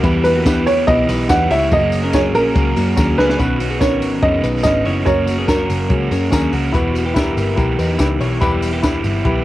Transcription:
0.03 picked electric bass E2, overdriven electric guitar E3 B3 E4 G4, clean electric guitar G3 E4, reed electric piano B3 E4 G4 B4, kick, ride, tambourine
0.24 upright piano B4, open hi-hat, tambourine
0.36 clean electric guitar A#3 F#4
0.45 overdriven electric guitar E3 B3 E4 G4, reed electric piano B3 E4 G4 B4, clean electric guitar B3 G4, kick, snare, ride, tambourine
0.66 overdriven electric guitar B3 E4 G4, upright piano C#5, open hi-hat, tambourine
0.87 picked electric bass B1, overdriven electric guitar E3 B3 E4 G4, reed electric piano B3 E4 G4 B4, upright piano D#5, kick, hi-hat pedal, ride, tambourine
1.09 picked electric bass B1, clean electric guitar D#4 B4, open hi-hat, tambourine
1.29 picked electric bass E2, overdriven electric guitar E3 B3 E4 G4, reed electric piano B3 E4 G4 C#5, upright piano F#5, kick, snare, ride, tambourine
1.50 picked electric bass C#2, overdriven electric guitar B3 E4 G4, clean electric guitar E4 C#5, upright piano E5, open hi-hat, tambourine
1.71 picked electric bass F#1, overdriven electric guitar F#3 A#3 C#4 G#4, clean electric guitar A#3 F#4, reed electric piano C#4 F#4 G#4 A#4, upright piano D#5, kick, hi-hat pedal, ride, tambourine
1.92 open hi-hat, tambourine
2.03 clean electric guitar C#4 A#4
2.13 overdriven electric guitar F#3 A#3 C#4 G#4, reed electric piano C#4 F#4 G#4 A#4, clean electric guitar C#4 G#4, upright piano C#5, kick, snare, hi-hat pedal, ride, tambourine
2.34 picked electric bass A#1, overdriven electric guitar A#3 C#4 G#4, upright piano A#4, open hi-hat, tambourine
2.54 picked electric bass C#2, overdriven electric guitar F#3 A#3 C#4 G#4, reed electric piano C#4 F#4 G#4 C#5, kick, hi-hat pedal, ride, tambourine
2.76 picked electric bass F#2, clean electric guitar A#3 F#4, open hi-hat, tambourine
2.96 picked electric bass D#2, overdriven electric guitar F#3 A#3 C#4 G#4, clean electric guitar A#3 F#4, reed electric piano C#4 F#4 G#4 A#4, kick, snare, tambourine
3.17 picked electric bass C#2, overdriven electric guitar A#3 C#4 G#4, clean electric guitar B3 G#4, upright piano B4, snare
3.30 snare
3.38 picked electric bass B1, overdriven electric guitar B2 D#3 B3 C#4 F#4, clean electric guitar B3 F#4, reed electric piano C#4 D#4 B4, kick, closed hi-hat, tambourine
3.59 overdriven electric guitar B3 C#4 F#4, open hi-hat, tambourine
3.70 clean electric guitar B3 G#4
3.79 overdriven electric guitar D#3 B3 C#4 F#4, reed electric piano C#4 D#4 B4, clean electric guitar C#4 A#4, upright piano C#5, kick, snare, closed hi-hat, tambourine
4.02 picked electric bass G#1, open hi-hat, tambourine
4.22 picked electric bass F#1, overdriven electric guitar B2 D#3 B3 C#4 F#4, reed electric piano C#4 D#4 G#4, upright piano D#5, kick, closed hi-hat
4.44 picked electric bass B1, clean electric guitar D#4 B4, open hi-hat, tambourine
4.63 picked electric bass G#1, overdriven electric guitar D#3 B3 C#4 F#4, reed electric piano C#4 D#4 B4, upright piano D#5, kick, snare, closed hi-hat, tambourine
4.85 picked electric bass F#1, overdriven electric guitar B3 C#4 F#4, clean electric guitar E4 C#5, open hi-hat
5.05 picked electric bass F#1, overdriven electric guitar F#3 A#3 C#4 F#4, clean electric guitar A#3 F#4, reed electric piano C#4 F#4 A#4, upright piano C#5, kick, closed hi-hat, tambourine
5.26 overdriven electric guitar A#3 C#4 F#4, open hi-hat, tambourine
5.38 clean electric guitar B3 G#4
5.48 overdriven electric guitar F#3 A#3 C#4 F#4, reed electric piano C#4 F#4 A#4, clean electric guitar C#4 A#4, upright piano A#4, kick, snare, closed hi-hat, tambourine
5.70 picked electric bass F#1, open hi-hat, tambourine
5.89 picked electric bass C#2, overdriven electric guitar F#3 A#3 C#4 F#4, reed electric piano C#4 F#4 G#4, kick, closed hi-hat
6.11 picked electric bass F#2, clean electric guitar C#4 A#4, open hi-hat, tambourine
6.31 picked electric bass D#2, overdriven electric guitar F#3 A#3 C#4 F#4, reed electric piano C#4 F#4 A#4, clean electric guitar C#4 G#4, kick, snare, closed hi-hat, tambourine
6.52 picked electric bass C#2, clean electric guitar A#3 F#4, overdriven electric guitar A#3 C#4 F#4, open hi-hat
6.73 picked electric bass E1, overdriven electric guitar E3 B3 E4 G4, clean electric guitar B3 F#4, reed electric piano E4 G4 B4, kick, closed hi-hat, tambourine
6.95 open hi-hat, tambourine
7.06 clean electric guitar B3 G4
7.14 overdriven electric guitar E3 B3 E4 G4, reed electric piano E4 G4 B4, clean electric guitar E4 A#4, kick, snare, closed hi-hat, tambourine
7.37 picked electric bass G1, open hi-hat, tambourine
7.56 picked electric bass B1, overdriven electric guitar E3 B3 E4 G4, reed electric piano E4 G4 A#4, kick, closed hi-hat, tambourine
7.79 picked electric bass E2, clean electric guitar D#4 B4, open hi-hat, tambourine
7.98 picked electric bass C#2, overdriven electric guitar E3 B3 E4 G4, reed electric piano E4 G4 B4, kick, snare, closed hi-hat, tambourine
8.20 picked electric bass B1, clean electric guitar E4 C#5, open hi-hat, tambourine
8.41 picked electric bass E1, overdriven electric guitar E3 B3 E4 G4, clean electric guitar G3 E4, reed electric piano E4 G4 B4, kick, closed hi-hat, tambourine
8.62 open hi-hat, tambourine
8.73 clean electric guitar B3 G4
8.82 overdriven electric guitar E3 B3 E4 G4, reed electric piano E4 G4 B4, clean electric guitar E4 B4, kick, snare, closed hi-hat, tambourine
9.04 picked electric bass G1, open hi-hat, tambourine
9.25 picked electric bass B1, overdriven electric guitar E3 B3 E4 G4, reed electric piano E4 G4 B4, kick, closed hi-hat

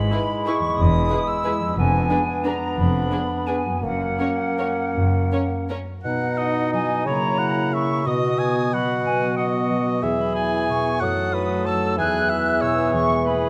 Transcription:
Already playing: harp G#2 G#3 E4 B4, bassoon G#3, clarinet E4, flute section B5
0.12 french horn section G#3 E4, viola section E4, violin section G#4 B4
0.46 french horn section G#3 E4, viola section E4, violin section G#4 B4, flute section C#6
0.60 harp E2
0.64 harp G#3
0.69 harp E4
0.73 harp B4
0.78 double bass section E1, cello section E2, flute section D#6
1.10 french horn section G#3 E4, viola section E4, violin section G#4 B4
1.29 flute section E6
1.44 french horn section G#3 E4, viola section E4, violin section G#4 B4
1.59 harp F2
1.64 harp G#3
1.68 harp D4
1.73 harp B4
1.77 double bass section F1, cello section F2, bassoon B3, clarinet D4, flute section G#5
2.10 french horn section B3 D4, viola section D4, violin section G#4 B4
2.44 french horn section B3 D4, viola section D4, violin section G#4 B4, flute section A#5
2.77 double bass section F1, cello section F2, flute section B5
3.11 french horn section B3 D4, viola section D4, violin section G#4 B4
3.47 french horn section B3 D4, viola section D4, violin section G#4 B4, flute section G#5
3.66 harp F#2
3.70 harp A#3
3.75 harp C#4
3.79 harp C#5
3.83 double bass section F#1, cello section F#2, bassoon A#3, clarinet C#4, flute section F#5
4.20 french horn section A#3 C#4, viola section C#4, violin section A#4 C#5
4.58 french horn section A#3 C#4, viola section C#4, violin section A#4 C#5
4.95 double bass section F#1, cello section F#2
5.32 french horn section A#3 C#4, viola section C#4, violin section A#4 C#5
5.69 french horn section A#3 C#4, viola section C#4, violin section A#4 C#5
6.04 bassoon B2, harp B2, french horn section B3 D#4, clarinet D#4, cor anglais F#5
6.21 harp D#4, flute section F#5
6.37 harp E4, cor anglais D#5
6.55 harp D#4
6.72 harp F#3, cor anglais D#5, flute section G#5
6.90 harp D#4
7.05 harp C#3, bassoon C#3, french horn section A#3 E4, clarinet E4, cor anglais C#5, flute section A#5
7.22 harp E4
7.38 harp F#4, cor anglais F#5
7.56 harp E4
7.73 harp C#4, clarinet E4, cor anglais E5, flute section C#6
7.90 harp E4
8.05 harp B2, bassoon B2, french horn section B3 F#4, clarinet F#4, cor anglais D#5, flute section D#6
8.21 harp F#4
8.39 harp G#4, cor anglais G#5
8.56 harp F#4
8.72 harp F#3, clarinet F#4, cor anglais F#5, flute section B5
9.05 harp B2, flute section G#5
9.20 harp B3
9.36 clarinet F#4, cor anglais D#5, flute section F#5
9.54 harp F#4
9.70 harp F#3
9.86 harp F#4
10.02 harp E2, bassoon E3, french horn section B3 G#4, clarinet G#4, cor anglais E5
10.18 harp E4, flute section B5
10.35 harp F#4, cor anglais G#5
10.53 harp E4
10.69 harp B2, flute section C#6
10.85 harp E4
11.00 harp F#2, bassoon F#3, french horn section A3 A4, clarinet A4, cor anglais F#5, flute section D#6
11.16 harp D#4
11.33 harp E4, cor anglais B4
11.49 harp D#4
11.65 harp F#3, cor anglais A5, flute section E6
11.82 harp D#4
11.97 harp E2, bassoon E3, french horn section B3 G#4, clarinet G#4, cor anglais G#5, flute section F#6
12.13 harp E4
12.29 harp F#4, cor anglais E5
12.45 harp E4
12.61 harp B2, clarinet G#4, cor anglais C#5, flute section E6
12.78 harp E4
12.93 harp E2, flute section C#6
13.09 harp G#3
13.24 harp A#3, clarinet G#4, cor anglais B4, flute section B5
13.42 harp E4

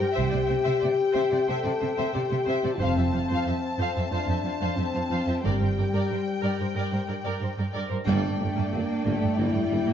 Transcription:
Already playing: french horn section G4, violin section G5
0.00 cello section G2
0.12 viola section C5, violin section E5
0.17 double bass section C2, cello section C3, french horn section G4
0.29 cello section C3, viola section C5, violin section D5
0.46 cello section C3, viola section C5, violin section E5
0.63 cello section C3, viola section C5, violin section E5
0.80 cello section C3, viola section C5, violin section D5
1.13 cello section C3, viola section C5, violin section E5
1.30 cello section C3, viola section C5, violin section D5
1.47 cello section C3, french horn section A4, viola section C5, violin section E5
1.64 cello section C3, viola section C5, violin section D5
1.80 cello section C3, viola section C5, violin section E5
1.96 cello section C3, viola section C5, violin section E5
2.12 cello section C3, french horn section G4, viola section C5, violin section D5
2.29 cello section C3, viola section C5, violin section E5
2.45 cello section C3, viola section C5, violin section E5
2.63 cello section C3, viola section C5, violin section D5
2.79 double bass section F1, cello section F2, french horn section C4, viola section C5, violin section F5 A5
2.95 cello section F2, viola section C5, violin section E5
3.12 cello section F2, viola section C5, violin section F5
3.28 cello section F2, viola section C5
3.33 violin section F5
3.45 cello section F2, viola section C5, violin section E5
3.78 cello section F2, viola section C5, violin section F5
3.95 cello section F2, viola section C5, violin section E5
4.11 cello section F2, french horn section D4, viola section C5, violin section F5
4.27 cello section F2, viola section C5, violin section E5
4.43 cello section F2, viola section C5, violin section F5
4.60 cello section F2, viola section C5, violin section F5
4.76 cello section F2, french horn section C4, viola section C5, violin section E5
4.94 cello section F2, viola section C5, violin section F5
5.10 cello section F2, viola section C5, violin section F5
5.27 cello section F2, viola section C5, violin section E5
5.43 double bass section G1, cello section G2, french horn section G3, viola section A#4, violin section D5 G5
5.60 cello section G2, viola section A#4, violin section C5
5.77 cello section G2, viola section A#4, violin section D5
5.93 cello section G2, viola section A#4, violin section D5
6.08 cello section G2, viola section A#4, violin section C5
6.41 cello section G2, viola section A#4, violin section D5
6.59 cello section G2, viola section A#4, violin section C5
6.75 cello section G2, viola section A#4, violin section D5
6.92 cello section G2, viola section A#4, violin section C5
7.08 cello section G2, viola section A#4, violin section D5
7.25 cello section G2, viola section A#4, violin section D5
7.41 cello section G2, viola section A#4, violin section C5
7.58 cello section G2, viola section A#4, violin section D5
7.73 cello section G2, viola section A#4, violin section D5
7.89 cello section G2, viola section A#4, violin section C5
8.05 tuba G1, double bass section G2, cello section G3, viola section A#3, french horn section D4, violin section D5 G5
8.22 double bass section G2, viola section A3
8.38 tuba G1, double bass section G2, cello section A3, viola section A#3
8.55 double bass section G2, viola section A#3
8.71 tuba G1, double bass section G2, viola section A3, cello section A#3
9.05 tuba G1, double bass section G2, cello section A3, viola section A#3
9.21 double bass section G2, viola section A3
9.37 tuba G1, double bass section G2, cello section G3, viola section A#3, french horn section E4
9.54 double bass section G2, viola section A3
9.71 tuba G1, double bass section G2, viola section A#3
9.86 double bass section G2, viola section A#3

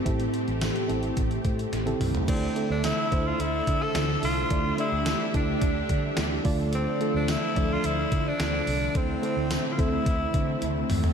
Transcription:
Already playing: string machine A3 C4 G4, fm electric piano C4 E4 G4 A4
0.05 fingered electric bass A1, fm electric piano A2 C4 E4 G4 A4, kick, closed hi-hat
0.20 closed hi-hat
0.34 closed hi-hat
0.48 fingered electric bass A1, closed hi-hat
0.61 snare, closed hi-hat, tambourine
0.76 closed hi-hat
0.88 fingered electric bass A1, fm electric piano C4 E4 G4 A4, closed hi-hat
1.03 closed hi-hat
1.17 fingered electric bass A1, kick, closed hi-hat
1.31 closed hi-hat
1.45 fingered electric bass A2, kick, closed hi-hat
1.59 closed hi-hat
1.73 fingered electric bass A1, snare, closed hi-hat
1.86 fm electric piano C4 E4 G4 A4, closed hi-hat, high tom
2.00 fingered electric bass C2, mid tom, open hi-hat
2.15 closed hi-hat, floor tom
2.28 fingered electric bass D2, string machine D3 D4 A4 E5, fm electric piano D3 A3 D4 E4 A4 D5, tenor saxophone C4, kick, closed hi-hat, crash
2.56 fm electric piano A3 D4 E4 A4 C5, closed hi-hat
2.70 fingered electric bass D2, tenor saxophone D4
2.84 tenor saxophone E4, snare, closed hi-hat, tambourine
3.12 fingered electric bass D2, fm electric piano A3 D4 E4 A4 C5, kick, closed hi-hat
3.27 tenor saxophone F4
3.39 fingered electric bass D2, tenor saxophone E4, closed hi-hat
3.67 fingered electric bass D3, kick, closed hi-hat
3.83 tenor saxophone A4
3.95 fingered electric bass D2, snare, closed hi-hat, tambourine
4.23 fingered electric bass C2, tenor saxophone F4, open hi-hat
4.50 fingered electric bass D2, fm electric piano D3 A3 D4 E4 A4 D5, string machine G4, kick, closed hi-hat
4.78 fm electric piano A3 D4 E4 A4 D5, tenor saxophone E4, closed hi-hat
4.92 fingered electric bass D2
5.06 snare, closed hi-hat, tambourine
5.34 fingered electric bass D2, fm electric piano A3 D4 E4 A4 D5, tenor saxophone D4, kick, closed hi-hat
5.62 fingered electric bass D2, kick, closed hi-hat
5.89 fingered electric bass D3, kick, closed hi-hat
6.17 fingered electric bass D2, snare, closed hi-hat, tambourine
6.44 fingered electric bass D2, fm electric piano D3 A3 D4 F4 A4 D5, string machine D3 F3 D4 A4, kick, open hi-hat
6.73 tenor saxophone C4, closed hi-hat
7.00 fm electric piano A3 D4 F4 A4 C5, closed hi-hat
7.15 fingered electric bass D2, tenor saxophone D4
7.28 tenor saxophone E4, snare, closed hi-hat, tambourine
7.55 fingered electric bass D2, fm electric piano F3 A3 D4 A4 D5, kick, closed hi-hat
7.73 tenor saxophone F4
7.84 fingered electric bass D2, tenor saxophone E4, closed hi-hat
8.12 fingered electric bass D3, kick, closed hi-hat
8.28 tenor saxophone D4
8.40 fingered electric bass D2, snare, closed hi-hat, tambourine
8.67 fingered electric bass C2, open hi-hat
8.94 fingered electric bass D2, fm electric piano D3 A3 C4 E4 A4 C5, string machine A3 C4 E4, tenor saxophone C4, kick, closed hi-hat
9.22 fm electric piano A3 C4 E4 A4 C5, tenor saxophone C4, closed hi-hat
9.37 fingered electric bass D2
9.51 snare, closed hi-hat, tambourine
9.72 tenor saxophone F4
9.78 fingered electric bass D2, fm electric piano A3 C4 E4 A4 C5, tenor saxophone E4, kick, closed hi-hat
10.06 fingered electric bass D2, kick, closed hi-hat
10.34 fingered electric bass D3, kick, closed hi-hat
10.62 fingered electric bass D2, closed hi-hat, high tom
10.90 fingered electric bass E2, mid tom, open hi-hat
11.04 floor tom

